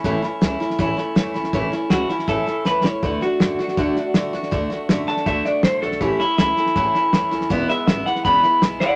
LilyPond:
<<
  \new Staff \with { instrumentName = "Clean electric guitar" } { \time 4/4 \key a \major \tempo 4 = 161 r1 | r4 fis'8 e'8 a'4 b'8 cis''8 | b'8 fis'2. r8 | r4. a''8 e''8 d''8 c''8 a'8 |
g'8 e'8 e'2. | r8 e''8 e''8 fis''8 b''4 r8 <d'' fis''>8 | }
  \new Staff \with { instrumentName = "Steel-string acoustic guitar" } { \time 4/4 \key a \major <a, e a cis' e'>8 <a cis' e'>8 <e a cis' e'>8 <a cis' e'>8 <a, e a cis' e'>8 <a cis' e'>8 <e a cis' e'>8 <a cis' e'>8 | <a, e a cis' e'>8 <a cis' e'>8 <e a cis' e'>8 <a cis' e'>8 <a, e a cis' e'>8 <a cis' e'>8 <e a cis' e'>8 <a cis' e'>8 | <d a d' fis'>8 <a d' fis'>8 <d a d' fis'>8 <a d' fis'>8 <d a d' fis'>8 <a d' fis'>8 <d a d' fis'>8 <a d' fis'>8 | <d a d' fis'>8 <a d' fis'>8 <d a d' fis'>8 <a d' fis'>8 <d a d' fis'>8 <a d' fis'>8 <d a d' fis'>8 <a d' fis'>8 |
<a, e a cis' e'>8 <a cis' e'>8 <e a cis' e'>8 <a cis' e'>8 <a, e a cis' e'>8 <a cis' e'>8 <e a cis' e'>8 <a cis' e'>8 | <e, b, e gis b e'>8 <e gis b e'>8 <e gis b e'>8 <e gis b e'>8 <e, b, e gis b e'>8 <e gis b e'>8 <e gis b e'>8 <e gis b e'>8 | }
  \new Staff \with { instrumentName = "Upright bass" } { \clef bass \time 4/4 \key a \major a,,8 r8 cis,8 r8 a,,8 r8 e,8 cis,8 | a,,8 r8 cis,8 r8 a,,8 r8 e,8 cis,8 | d,8 r8 fis,8 r8 d,8 r8 a,8 fis,8 | d,8 r8 fis,8 r8 d,8 r8 a,8 b,,8 |
a,,8 r8 cis,8 r8 a,,8 r8 e,8 dis,8 | e,,8 r8 gis,,8 r8 e,,8 r8 b,,8 gis,,8 | }
  \new DrumStaff \with { instrumentName = "Drums" } \drummode { \time 4/4 <bd sn>8 sn8 <hhp sn>8 sn16 sn16 <bd sn>8 sn8 <hhp sn>8 sn16 sn16 | <bd sn>8 sn8 <hhp sn>8 sn16 sn16 <bd sn>8 sn8 <hhp sn>8 sn8 | <bd sn>8 sn8 <hhp sn>8 sn16 sn16 <bd sn>8 sn8 <hhp sn>8 sn16 sn16 | <bd sn>8 sn8 <hhp sn>8 sn16 sn16 <bd sn>8 sn8 <hhp sn>8 sn16 sn16 |
<bd sn>8 sn8 <hhp sn>8 sn16 sn16 <bd sn>8 sn8 <hhp sn>8 sn16 sn16 | <bd sn>8 sn8 <hhp sn>8 sn16 sn16 <bd sn>8 sn8 <hhp sn>8 sn8 | }
>>